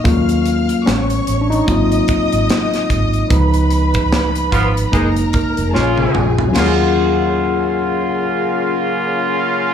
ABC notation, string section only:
X:1
M:4/4
L:1/8
Q:"Swing 16ths" 1/4=74
K:Ebm
V:1 name="String section"
[ff']2 [^c^c']2 [ee']4 | [cc']4 [Bb]2 [Aa]2 | [Fda]8 |]